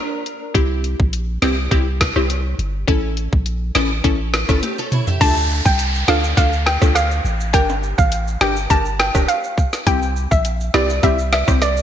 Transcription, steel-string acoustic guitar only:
Already playing: D4 A#4
4.49 C#4 A4
4.63 G4
4.78 C#4 A4
4.92 E4 C#5
5.07 G4 E5

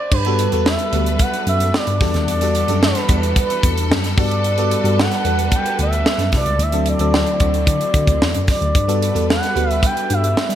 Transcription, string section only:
0.12 G3 D4 A4 B4
2.00 E3 G3 B3 A4
4.16 G3 D4 B4
6.59 D3 A3 C4 E4
8.73 G3 D4 A4 B4

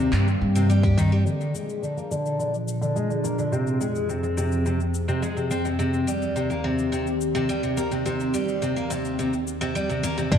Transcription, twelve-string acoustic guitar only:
Already playing: C3
0.13 C3
0.55 C3
0.70 G3
0.84 G4
0.98 D#3
1.12 G3
1.26 D3
1.54 G#3
1.82 D3
1.97 A#3
2.11 D3
2.39 D3
2.81 D3
2.96 G#3
3.10 D3
3.24 A#3
3.38 D3
3.52 C3
3.81 G#3
4.09 C3
4.23 C4
4.37 C3
4.66 C3
5.08 C3
5.22 G#3
5.36 C3
5.51 C4
5.65 C3
5.79 C3
6.07 G3
6.36 C3
6.50 A#3
6.64 C3
6.92 C3
7.35 C3
7.49 G3
7.63 C3
7.77 A#3
7.91 C3
8.06 C3
8.34 G3
8.62 C3
8.76 A#3
8.90 C3
9.19 C3
9.61 C3
9.75 G3
9.89 C3
10.03 A#3
10.18 C3
10.32 D3

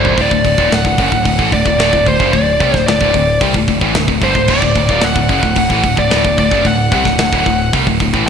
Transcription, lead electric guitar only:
Already playing: C5 D5
0.21 D5
0.74 F#5
1.26 F#5
1.53 D5
2.08 C5
2.33 D5
2.87 D5
4.24 C5
4.51 D5
5.04 F#5
5.58 F#5
5.99 D5
6.39 D5
6.66 F#5
6.94 F#5

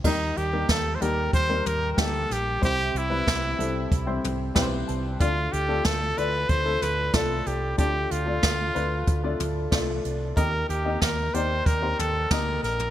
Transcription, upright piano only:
0.04 D#3 G3 A#3 D#4 A#4
0.53 G3 A#3 D#4 A#4
1.01 G3 A#3 D#4 G4
1.49 G3 A#3 D#4 A#4
1.97 G3 A#3 D#4 G4
2.61 C3 G3 C4 E4 C5
3.09 G3 C4 E4 B4
3.58 G3 C4 E4 A4
4.06 G3 C4 E4 C5
4.55 G3 C4 E4 B4 G5
4.62 C5
4.88 A5
5.20 D3 A3 D4 F4 D5
5.68 A3 D4 F4 A4
6.17 A3 D4 F4 D5
6.65 A3 D4 F4 A4
7.13 A3 D4 F4 D5
7.77 D3 A3 D4 F4 D5
8.26 A3 D4 F4 D5
8.75 A3 D4 F4 B4
9.23 A3 D4 F4 D5
9.71 A3 D4 F4 D5
10.36 D#3 A#3 D#4 G4 D#5
10.85 A#3 D#4 G4 D#5
11.34 A#3 D#4 G4 D5
11.82 A#3 D#4 G4 C5
12.31 A#3 D#4 G4 D#5

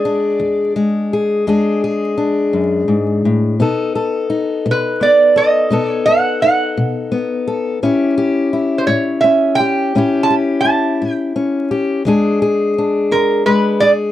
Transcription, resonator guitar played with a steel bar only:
Already playing: D5
4.71 B4
5.03 D5
5.37 D#5
5.90 C#5
6.06 F#5
6.42 F#5
8.78 C5
8.87 C#5
9.21 E5
9.55 G5
10.23 A5
10.61 A5
11.12 G5
13.12 A#4
13.46 B4
13.80 D5

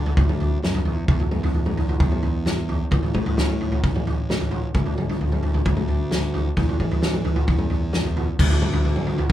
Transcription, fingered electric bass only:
Already playing: D3
0.17 D2
0.62 F#2
0.85 E2
1.08 E2
1.31 E2
2.00 E2
2.92 A1
3.15 A2
3.84 A1
4.75 D2
4.98 D2
5.66 D2
6.57 E2
6.80 E3
7.48 E2
8.39 D2

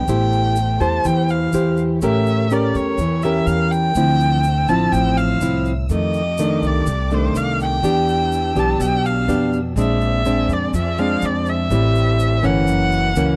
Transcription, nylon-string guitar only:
0.09 A3 E4 G4 C5
0.81 E4 G4 C5
1.05 E3
1.54 E4 G4 C5
2.02 A3 C#4 G4 A#4
2.52 C#4 G4 A#4
3.01 E3
3.24 C#4 G4 A#4
3.96 D3 F3 C4 E4
4.69 F3 C4 E4
4.94 A2
5.42 F3 C4 E4
5.90 F2 D#3 A3
6.39 D#3 A3 D4
6.87 C3
7.11 D#3 A3 D4
7.83 E3 B3 D4 G4
8.56 B3 D4 G4
8.79 B2
9.28 B3 D4 G4
9.77 A#2 G#3 C4 D4
10.26 G#3 C4 D4
10.75 F3
10.99 G#3 C4 D4
11.71 A2 G3 C4 E4
12.43 E3 A#3 C#4
12.68 F#2
13.17 E3 A#3 C#4

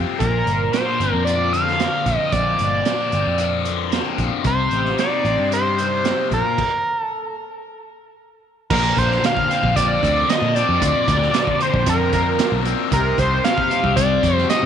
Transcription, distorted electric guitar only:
Already playing: G3 C4 F4
0.21 A#2
0.73 D4
1.00 C4
1.26 F3
1.52 D3
1.79 C4
2.06 F3
2.33 A#2
2.86 D4
3.13 C4
3.38 F3
3.65 D3
3.91 C4
4.19 F3
4.46 C3
4.98 D#4
5.25 C4
5.51 G3
5.79 C3
6.05 C4
6.32 A#2
8.71 A#2
8.97 D3
9.23 D3
9.49 C4
9.76 F3
10.03 C4
10.28 D4
10.56 C4
10.81 A#2
11.07 D3
11.34 D3
11.60 C4
11.86 F3
12.13 C4
12.39 D4
12.66 C4
12.93 C3
13.20 G3
13.46 C3
13.71 C4
13.98 G3
14.24 C4
14.49 D#4

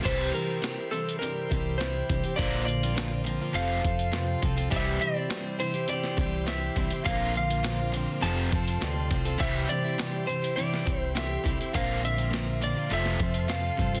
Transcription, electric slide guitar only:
0.05 C5
0.34 A#4
0.91 A4
1.19 A#4
1.78 C5
2.36 D5
2.65 D5
3.55 F5
4.76 E5
5.01 D5
5.60 C5
5.89 D5
6.48 E5
7.06 F5
7.37 F5
8.22 A5
9.40 E5
9.69 D5
10.27 C5
10.56 D5
10.99 C5
11.18 E5
11.75 F5
12.05 E5
12.64 D5
12.93 E5
13.50 F5

